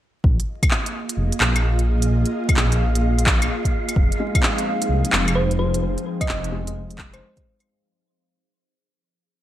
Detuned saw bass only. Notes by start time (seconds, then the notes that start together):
0.24 A#1
1.17 F1
1.40 A#1
2.10 A#1
2.57 A#1
3.96 F1
4.89 C2
5.13 F1
5.82 F1
6.28 F1